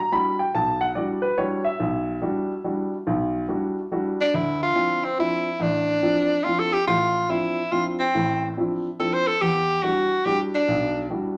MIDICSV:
0, 0, Header, 1, 3, 480
1, 0, Start_track
1, 0, Tempo, 422535
1, 607, Time_signature, 3, 2, 24, 8
1, 12917, End_track
2, 0, Start_track
2, 0, Title_t, "Tenor saxophone"
2, 0, Program_c, 0, 66
2, 4785, Note_on_c, 0, 62, 90
2, 4944, Note_on_c, 0, 64, 83
2, 4961, Note_off_c, 0, 62, 0
2, 5245, Note_off_c, 0, 64, 0
2, 5260, Note_on_c, 0, 65, 92
2, 5732, Note_on_c, 0, 60, 82
2, 5749, Note_off_c, 0, 65, 0
2, 5887, Note_off_c, 0, 60, 0
2, 5907, Note_on_c, 0, 64, 87
2, 6387, Note_on_c, 0, 62, 88
2, 6404, Note_off_c, 0, 64, 0
2, 7319, Note_on_c, 0, 65, 86
2, 7336, Note_off_c, 0, 62, 0
2, 7490, Note_on_c, 0, 69, 90
2, 7507, Note_off_c, 0, 65, 0
2, 7646, Note_on_c, 0, 67, 82
2, 7663, Note_off_c, 0, 69, 0
2, 7803, Note_off_c, 0, 67, 0
2, 7809, Note_on_c, 0, 65, 94
2, 8295, Note_on_c, 0, 64, 80
2, 8312, Note_off_c, 0, 65, 0
2, 8769, Note_on_c, 0, 65, 82
2, 8786, Note_off_c, 0, 64, 0
2, 8925, Note_off_c, 0, 65, 0
2, 9088, Note_on_c, 0, 60, 71
2, 9682, Note_off_c, 0, 60, 0
2, 10225, Note_on_c, 0, 69, 81
2, 10380, Note_on_c, 0, 72, 92
2, 10397, Note_off_c, 0, 69, 0
2, 10535, Note_on_c, 0, 69, 93
2, 10552, Note_off_c, 0, 72, 0
2, 10694, Note_on_c, 0, 67, 89
2, 10711, Note_off_c, 0, 69, 0
2, 11166, Note_on_c, 0, 66, 75
2, 11183, Note_off_c, 0, 67, 0
2, 11657, Note_on_c, 0, 67, 79
2, 11674, Note_off_c, 0, 66, 0
2, 11811, Note_off_c, 0, 67, 0
2, 11985, Note_on_c, 0, 62, 77
2, 12575, Note_off_c, 0, 62, 0
2, 12917, End_track
3, 0, Start_track
3, 0, Title_t, "Grand piano"
3, 0, Program_c, 1, 0
3, 0, Note_on_c, 1, 82, 83
3, 124, Note_off_c, 1, 82, 0
3, 136, Note_on_c, 1, 55, 51
3, 140, Note_on_c, 1, 62, 49
3, 140, Note_on_c, 1, 64, 46
3, 142, Note_on_c, 1, 83, 87
3, 144, Note_on_c, 1, 66, 59
3, 440, Note_off_c, 1, 83, 0
3, 446, Note_on_c, 1, 79, 73
3, 463, Note_off_c, 1, 55, 0
3, 464, Note_off_c, 1, 62, 0
3, 465, Note_off_c, 1, 64, 0
3, 467, Note_off_c, 1, 66, 0
3, 604, Note_off_c, 1, 79, 0
3, 620, Note_on_c, 1, 81, 84
3, 621, Note_on_c, 1, 35, 64
3, 918, Note_off_c, 1, 81, 0
3, 918, Note_on_c, 1, 78, 88
3, 1029, Note_off_c, 1, 35, 0
3, 1079, Note_off_c, 1, 78, 0
3, 1081, Note_on_c, 1, 74, 67
3, 1087, Note_on_c, 1, 55, 50
3, 1094, Note_on_c, 1, 62, 45
3, 1096, Note_on_c, 1, 64, 47
3, 1099, Note_on_c, 1, 66, 60
3, 1385, Note_on_c, 1, 71, 78
3, 1388, Note_off_c, 1, 74, 0
3, 1417, Note_off_c, 1, 55, 0
3, 1420, Note_off_c, 1, 62, 0
3, 1421, Note_off_c, 1, 64, 0
3, 1423, Note_off_c, 1, 66, 0
3, 1552, Note_off_c, 1, 71, 0
3, 1565, Note_on_c, 1, 73, 76
3, 1566, Note_on_c, 1, 55, 52
3, 1566, Note_on_c, 1, 62, 48
3, 1566, Note_on_c, 1, 64, 49
3, 1573, Note_on_c, 1, 66, 53
3, 1869, Note_off_c, 1, 73, 0
3, 1869, Note_on_c, 1, 76, 78
3, 1896, Note_off_c, 1, 55, 0
3, 1896, Note_off_c, 1, 62, 0
3, 1896, Note_off_c, 1, 64, 0
3, 1899, Note_off_c, 1, 66, 0
3, 2040, Note_on_c, 1, 35, 68
3, 2456, Note_off_c, 1, 35, 0
3, 2518, Note_on_c, 1, 55, 58
3, 2524, Note_on_c, 1, 62, 52
3, 2528, Note_on_c, 1, 64, 43
3, 2530, Note_on_c, 1, 66, 57
3, 2850, Note_off_c, 1, 55, 0
3, 2854, Note_off_c, 1, 62, 0
3, 2855, Note_off_c, 1, 64, 0
3, 2856, Note_off_c, 1, 66, 0
3, 2950, Note_off_c, 1, 76, 0
3, 3002, Note_on_c, 1, 55, 53
3, 3005, Note_on_c, 1, 62, 47
3, 3007, Note_on_c, 1, 64, 51
3, 3008, Note_on_c, 1, 66, 51
3, 3332, Note_off_c, 1, 55, 0
3, 3333, Note_off_c, 1, 62, 0
3, 3335, Note_off_c, 1, 64, 0
3, 3335, Note_off_c, 1, 66, 0
3, 3485, Note_on_c, 1, 35, 75
3, 3898, Note_off_c, 1, 35, 0
3, 3959, Note_on_c, 1, 55, 52
3, 3963, Note_on_c, 1, 62, 54
3, 3964, Note_on_c, 1, 64, 46
3, 3968, Note_on_c, 1, 66, 60
3, 4290, Note_off_c, 1, 55, 0
3, 4291, Note_off_c, 1, 62, 0
3, 4292, Note_off_c, 1, 64, 0
3, 4294, Note_off_c, 1, 66, 0
3, 4448, Note_on_c, 1, 55, 51
3, 4452, Note_on_c, 1, 62, 51
3, 4452, Note_on_c, 1, 64, 51
3, 4455, Note_on_c, 1, 66, 64
3, 4774, Note_off_c, 1, 55, 0
3, 4776, Note_off_c, 1, 62, 0
3, 4776, Note_off_c, 1, 64, 0
3, 4778, Note_off_c, 1, 66, 0
3, 4931, Note_on_c, 1, 38, 64
3, 5340, Note_off_c, 1, 38, 0
3, 5398, Note_on_c, 1, 53, 47
3, 5405, Note_on_c, 1, 60, 47
3, 5405, Note_on_c, 1, 62, 42
3, 5407, Note_on_c, 1, 64, 55
3, 5729, Note_off_c, 1, 53, 0
3, 5732, Note_off_c, 1, 60, 0
3, 5732, Note_off_c, 1, 62, 0
3, 5734, Note_off_c, 1, 64, 0
3, 5884, Note_on_c, 1, 53, 47
3, 5889, Note_on_c, 1, 60, 45
3, 5894, Note_on_c, 1, 62, 46
3, 5895, Note_on_c, 1, 64, 54
3, 6212, Note_off_c, 1, 53, 0
3, 6214, Note_off_c, 1, 60, 0
3, 6217, Note_off_c, 1, 62, 0
3, 6218, Note_off_c, 1, 64, 0
3, 6359, Note_on_c, 1, 33, 66
3, 6774, Note_off_c, 1, 33, 0
3, 6841, Note_on_c, 1, 53, 51
3, 6844, Note_on_c, 1, 60, 44
3, 6848, Note_on_c, 1, 62, 49
3, 6852, Note_on_c, 1, 64, 51
3, 7171, Note_off_c, 1, 53, 0
3, 7173, Note_off_c, 1, 60, 0
3, 7175, Note_off_c, 1, 62, 0
3, 7176, Note_off_c, 1, 64, 0
3, 7327, Note_on_c, 1, 53, 50
3, 7329, Note_on_c, 1, 60, 41
3, 7332, Note_on_c, 1, 62, 43
3, 7334, Note_on_c, 1, 64, 55
3, 7655, Note_off_c, 1, 53, 0
3, 7655, Note_off_c, 1, 60, 0
3, 7657, Note_off_c, 1, 62, 0
3, 7658, Note_off_c, 1, 64, 0
3, 7808, Note_on_c, 1, 33, 62
3, 7810, Note_on_c, 1, 45, 61
3, 8220, Note_off_c, 1, 33, 0
3, 8221, Note_off_c, 1, 45, 0
3, 8283, Note_on_c, 1, 53, 48
3, 8283, Note_on_c, 1, 60, 43
3, 8288, Note_on_c, 1, 62, 43
3, 8292, Note_on_c, 1, 64, 55
3, 8613, Note_off_c, 1, 53, 0
3, 8613, Note_off_c, 1, 60, 0
3, 8616, Note_off_c, 1, 62, 0
3, 8618, Note_off_c, 1, 64, 0
3, 8767, Note_on_c, 1, 53, 49
3, 8773, Note_on_c, 1, 60, 43
3, 8775, Note_on_c, 1, 62, 39
3, 8775, Note_on_c, 1, 64, 58
3, 9095, Note_off_c, 1, 53, 0
3, 9098, Note_off_c, 1, 60, 0
3, 9099, Note_off_c, 1, 62, 0
3, 9100, Note_off_c, 1, 64, 0
3, 9253, Note_on_c, 1, 33, 57
3, 9255, Note_on_c, 1, 45, 63
3, 9664, Note_off_c, 1, 33, 0
3, 9664, Note_off_c, 1, 45, 0
3, 9738, Note_on_c, 1, 53, 52
3, 9739, Note_on_c, 1, 60, 45
3, 9744, Note_on_c, 1, 62, 44
3, 9748, Note_on_c, 1, 64, 57
3, 10061, Note_off_c, 1, 53, 0
3, 10062, Note_off_c, 1, 60, 0
3, 10064, Note_off_c, 1, 62, 0
3, 10067, Note_off_c, 1, 64, 0
3, 10217, Note_on_c, 1, 53, 46
3, 10218, Note_on_c, 1, 60, 45
3, 10218, Note_on_c, 1, 62, 42
3, 10223, Note_on_c, 1, 64, 52
3, 10542, Note_off_c, 1, 53, 0
3, 10542, Note_off_c, 1, 60, 0
3, 10542, Note_off_c, 1, 62, 0
3, 10544, Note_off_c, 1, 64, 0
3, 10696, Note_on_c, 1, 40, 62
3, 10698, Note_on_c, 1, 52, 55
3, 11106, Note_off_c, 1, 40, 0
3, 11107, Note_off_c, 1, 52, 0
3, 11171, Note_on_c, 1, 55, 47
3, 11172, Note_on_c, 1, 62, 40
3, 11176, Note_on_c, 1, 64, 43
3, 11177, Note_on_c, 1, 66, 57
3, 11499, Note_off_c, 1, 55, 0
3, 11500, Note_off_c, 1, 62, 0
3, 11502, Note_off_c, 1, 64, 0
3, 11502, Note_off_c, 1, 66, 0
3, 11650, Note_on_c, 1, 55, 49
3, 11651, Note_on_c, 1, 62, 48
3, 11653, Note_on_c, 1, 64, 44
3, 11658, Note_on_c, 1, 66, 54
3, 11979, Note_off_c, 1, 55, 0
3, 11980, Note_off_c, 1, 62, 0
3, 11981, Note_off_c, 1, 64, 0
3, 11983, Note_off_c, 1, 66, 0
3, 12133, Note_on_c, 1, 35, 71
3, 12546, Note_off_c, 1, 35, 0
3, 12609, Note_on_c, 1, 55, 49
3, 12616, Note_on_c, 1, 62, 43
3, 12617, Note_on_c, 1, 64, 40
3, 12620, Note_on_c, 1, 66, 53
3, 12917, Note_off_c, 1, 55, 0
3, 12917, Note_off_c, 1, 62, 0
3, 12917, Note_off_c, 1, 64, 0
3, 12917, Note_off_c, 1, 66, 0
3, 12917, End_track
0, 0, End_of_file